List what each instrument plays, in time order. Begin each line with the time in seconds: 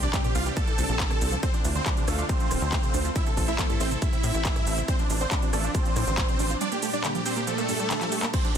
Already playing: analog synth pad C3 C4 D4 G4
0.03 synth arpeggio sound C3, supersaw synth D4 D5, shaker
0.14 synth arpeggio sound G2, supersaw synth G4, kick, clap, closed hi-hat, shaker
0.24 synth arpeggio sound A#2, supersaw synth G4, closed hi-hat, shaker
0.35 analog synth bass C2, synth arpeggio sound C4, supersaw synth F4 F5, open hi-hat, shaker
0.46 synth arpeggio sound E3, supersaw synth G4, closed hi-hat, shaker
0.57 synth arpeggio sound A#2, supersaw synth A4 A5, kick, closed hi-hat, shaker
0.67 synth arpeggio sound E3, closed hi-hat, shaker
0.78 analog synth bass C2, synth arpeggio sound A#2, open hi-hat, shaker
0.89 analog synth bass A#1, synth arpeggio sound A#2, closed hi-hat, shaker
1.00 synth arpeggio sound C3, kick, clap, closed hi-hat, shaker
1.11 synth arpeggio sound C3, cross-stick, closed hi-hat, shaker
1.21 analog synth bass C2, synth arpeggio sound C2, open hi-hat, shaker
1.32 synth arpeggio sound F3, closed hi-hat, shaker
1.43 synth arpeggio sound D3, analog synth pad D3 A3 F4, supersaw synth C4 C5, kick, closed hi-hat, shaker
1.54 synth arpeggio sound F3, supersaw synth D4, closed hi-hat, shaker
1.64 analog synth bass D2, synth arpeggio sound E3, supersaw synth D4, open hi-hat, shaker
1.75 synth arpeggio sound D3, supersaw synth C4 C5, closed hi-hat, shaker
1.86 synth arpeggio sound A2, supersaw synth D4, kick, clap, closed hi-hat, shaker
1.97 synth arpeggio sound C3, supersaw synth D4, closed hi-hat, shaker
2.08 analog synth bass D2, supersaw synth A3 A4, synth arpeggio sound D4, cross-stick, open hi-hat, shaker
2.18 synth arpeggio sound F3, supersaw synth D4, closed hi-hat, shaker
2.29 synth arpeggio sound C3, supersaw synth C4 C5, kick, closed hi-hat, shaker
2.40 synth arpeggio sound F3, closed hi-hat, shaker
2.51 analog synth bass D1, synth arpeggio sound D2, cross-stick, open hi-hat, shaker
2.62 analog synth bass D2, synth arpeggio sound D3, closed hi-hat, shaker
2.72 synth arpeggio sound A2, kick, clap, closed hi-hat, shaker
2.83 synth arpeggio sound C3, closed hi-hat, shaker
2.94 analog synth bass D2, synth arpeggio sound D4, open hi-hat, shaker
3.05 synth arpeggio sound F3, closed hi-hat, shaker
3.16 synth arpeggio sound A2, supersaw synth E4 E5, analog synth pad E4, kick, closed hi-hat, shaker
3.26 synth arpeggio sound C3, supersaw synth A4, closed hi-hat, shaker
3.37 analog synth bass A1, synth arpeggio sound A2, supersaw synth A4, kick, open hi-hat, shaker
3.48 synth arpeggio sound A2, supersaw synth E4 E5, closed hi-hat, shaker
3.59 synth arpeggio sound E2, supersaw synth A4, kick, clap, closed hi-hat, shaker
3.70 synth arpeggio sound G2, supersaw synth A4, closed hi-hat, shaker
3.80 analog synth bass A1, synth arpeggio sound A3, supersaw synth C4 C5, open hi-hat, shaker
3.91 synth arpeggio sound C3, supersaw synth A4, closed hi-hat, shaker
4.02 synth arpeggio sound G2, supersaw synth E4 E5, kick, closed hi-hat, shaker
4.13 synth arpeggio sound C3, closed hi-hat, shaker
4.24 synth arpeggio sound A2, analog synth bass A2, open hi-hat, shaker
4.34 analog synth bass A1, synth arpeggio sound A2, closed hi-hat, shaker
4.45 synth arpeggio sound E2, kick, clap, closed hi-hat, shaker
4.56 synth arpeggio sound G2, cross-stick, closed hi-hat, shaker
4.67 analog synth bass A1, synth arpeggio sound A3, open hi-hat, shaker
4.78 synth arpeggio sound C3, closed hi-hat, shaker
4.88 synth arpeggio sound D3, analog synth pad F3 D4, supersaw synth C4 C5, kick, closed hi-hat, shaker
4.99 synth arpeggio sound F3, supersaw synth D4, closed hi-hat, shaker
5.10 analog synth bass A1, synth arpeggio sound E3, supersaw synth D4, open hi-hat, shaker
5.21 synth arpeggio sound D3, supersaw synth C4 C5, closed hi-hat, shaker
5.31 synth arpeggio sound A2, supersaw synth D4, kick, clap, closed hi-hat, shaker
5.42 synth arpeggio sound C3, supersaw synth D4, closed hi-hat, shaker
5.53 analog synth bass A1, supersaw synth A3 A4, synth arpeggio sound D4, cross-stick, open hi-hat, shaker
5.64 synth arpeggio sound F3, supersaw synth D4, closed hi-hat, shaker
5.75 synth arpeggio sound C3, supersaw synth C4 C5, kick, closed hi-hat, shaker
5.85 synth arpeggio sound F3, closed hi-hat, shaker
5.96 synth arpeggio sound D2, analog synth bass A2, cross-stick, open hi-hat, shaker
6.07 analog synth bass A1, synth arpeggio sound D3, closed hi-hat, shaker
6.18 synth arpeggio sound A2, kick, clap, closed hi-hat, shaker
6.29 synth arpeggio sound C3, closed hi-hat, shaker
6.39 analog synth bass A1, synth arpeggio sound D4, open hi-hat, shaker
6.50 synth arpeggio sound F3, closed hi-hat, shaker
6.61 analog synth pad A#2 G3, synth arpeggio sound G3, supersaw synth D4 D5, closed hi-hat, shaker
6.72 synth arpeggio sound A#3, supersaw synth G4, closed hi-hat, shaker
6.83 synth arpeggio sound A3, supersaw synth G4, open hi-hat, shaker
6.93 synth arpeggio sound G3, supersaw synth D4 D5, closed hi-hat, shaker
7.04 synth arpeggio sound D3, supersaw synth G4, clap, closed hi-hat, shaker
7.15 synth arpeggio sound F3, supersaw synth G4, closed hi-hat, shaker
7.26 supersaw synth C4 C5, synth arpeggio sound G4, open hi-hat, shaker
7.36 synth arpeggio sound A#3, supersaw synth G4, closed hi-hat, shaker
7.47 synth arpeggio sound F3, supersaw synth A3 A4, closed hi-hat, shaker
7.58 synth arpeggio sound A#3, closed hi-hat, shaker
7.69 synth arpeggio sound G2, open hi-hat, shaker
7.80 synth arpeggio sound G3, closed hi-hat, shaker
7.90 synth arpeggio sound D3, clap, closed hi-hat, shaker
8.01 synth arpeggio sound F3, clap, closed hi-hat, shaker
8.12 synth arpeggio sound G4, open hi-hat, shaker
8.23 synth arpeggio sound A#3, clap, shaker
8.34 synth arpeggio sound D3, analog synth pad D3 A3 C4 F4, supersaw synth C4 C5, kick, closed hi-hat, crash, shaker
8.44 synth arpeggio sound F3, supersaw synth D4, closed hi-hat, shaker